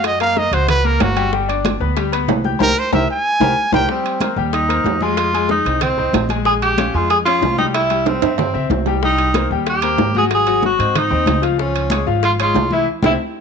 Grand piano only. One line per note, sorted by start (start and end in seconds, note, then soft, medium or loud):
0.00 0.15 F#4 medium
0.00 0.15 F#5 medium
0.00 0.15 F#6 medium
0.21 0.47 A#3 medium
0.21 0.47 A#4 medium
0.21 0.47 A#5 medium
0.52 0.79 F#4 medium
0.52 0.79 F#5 medium
0.52 0.79 F#6 medium
0.84 1.11 A#3 medium
0.84 1.11 A#4 medium
0.84 1.11 A#5 medium
1.16 1.30 G3 medium
1.16 1.30 G4 medium
1.16 1.30 G5 medium
1.33 1.46 G3 medium
1.33 1.46 G4 medium
1.33 1.46 G5 medium
1.48 1.75 D4 medium
1.48 1.75 D5 medium
1.48 1.75 D6 medium
1.80 1.94 B3 medium
1.80 1.94 B4 medium
1.80 1.94 B5 medium
1.97 2.10 G3 medium
1.97 2.10 G4 medium
1.97 2.10 G5 medium
2.12 2.39 B3 medium
2.12 2.39 B4 medium
2.12 2.39 B5 medium
2.45 2.58 G4 medium
2.45 2.58 G5 medium
2.45 2.58 G6 medium
2.59 2.70 G4 loud
2.59 2.70 A#4 loud
2.59 2.70 C5 loud
2.92 3.03 G4 loud
2.92 3.03 A#4 medium
2.92 3.03 C5 loud
3.41 3.51 G4 loud
3.41 3.51 A#4 medium
3.41 3.51 C5 loud
3.74 3.84 G4 loud
3.74 3.84 A#4 medium
3.74 3.84 C5 loud
3.89 4.15 G3 medium
3.89 4.16 G4 medium
3.89 4.16 G5 medium
4.21 4.34 A#3 medium
4.21 4.34 A#4 medium
4.21 4.34 C5 medium
4.37 4.63 G3 medium
4.37 4.63 G4 medium
4.37 4.64 G5 medium
4.69 4.95 A#3 medium
4.69 4.95 A#4 medium
4.69 4.96 C5 medium
5.02 5.28 G#3 medium
5.02 5.28 G#4 medium
5.02 5.28 G#5 medium
5.34 5.60 G#3 medium
5.34 5.60 G#4 medium
5.34 5.60 G#5 medium
5.66 5.92 C4 medium
5.66 5.92 C5 medium
5.66 5.93 D#5 medium
5.98 6.24 C4 medium
5.98 6.24 C5 medium
5.98 6.24 D#5 medium
6.29 6.43 G#3 medium
6.29 6.43 G#4 medium
6.29 6.43 G#5 medium
6.46 6.72 G#3 medium
6.46 6.73 G#4 medium
6.46 6.73 G#5 medium
6.78 6.91 C#4 medium
6.78 6.92 C#5 medium
6.78 6.92 F5 medium
6.94 7.20 G#3 medium
6.94 7.21 G#4 medium
6.94 7.21 G#5 medium
7.27 7.53 C#4 medium
7.27 7.53 C#5 medium
7.27 7.53 F5 medium
7.58 7.85 G3 medium
7.58 7.85 G4 medium
7.58 7.85 G5 medium
7.90 8.17 G3 medium
7.90 8.17 G4 medium
7.90 8.17 G5 medium
8.22 8.49 C4 medium
8.22 8.49 C5 medium
8.22 8.49 E5 medium
8.54 8.80 C4 medium
8.54 8.80 C5 medium
8.54 8.81 E5 medium
8.87 9.00 G3 medium
8.87 9.00 G4 medium
8.87 9.00 G5 medium
9.03 9.29 G3 medium
9.03 9.29 G4 medium
9.03 9.29 G5 medium
9.35 9.48 A#3 medium
9.35 9.49 A#4 medium
9.35 9.49 C5 medium
9.52 9.78 G3 medium
9.52 9.78 G4 medium
9.52 9.78 G5 medium
9.83 10.09 A#3 medium
9.83 10.09 A#4 medium
9.83 10.10 C5 medium
10.16 10.42 F#3 medium
10.16 10.42 F#4 medium
10.16 10.42 F#5 medium
10.47 10.73 F#3 medium
10.47 10.73 F#4 medium
10.47 10.74 F#5 medium
10.79 11.05 C4 medium
10.79 11.06 C5 medium
10.79 11.06 D#5 medium
11.10 11.37 C4 medium
11.10 11.37 C5 medium
11.10 11.37 D#5 medium
11.42 11.56 F3 loud
11.42 11.56 F4 medium
11.42 11.56 F5 medium
11.58 11.85 F3 medium
11.58 11.85 F4 medium
11.58 11.85 F5 medium
11.91 12.05 G#3 medium
11.91 12.05 G#4 medium
11.91 12.04 C#5 medium
12.07 12.33 F3 medium
12.07 12.33 F4 medium
12.07 12.34 F5 medium
12.40 12.66 G#3 medium
12.40 12.66 G#4 medium
12.40 12.66 C#5 medium
12.72 12.85 E3 medium
12.72 12.85 E4 medium
12.72 12.85 E5 medium
13.03 13.13 C4 medium
13.03 13.13 E4 loud
13.03 13.13 G4 loud